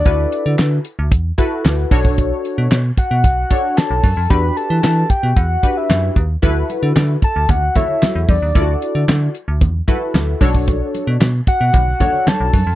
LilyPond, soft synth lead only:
\new Staff \with { instrumentName = "Soft synth lead" } { \time 4/4 \key d \major \tempo 4 = 113 d''4 r2. | r4. fis''4. a''4 | b''8 a''4 g''8 fis''8. e''8. r8 | r4. a''8 fis''8 e''4 d''8~ |
d''4 r2. | r4. fis''4. a''4 | }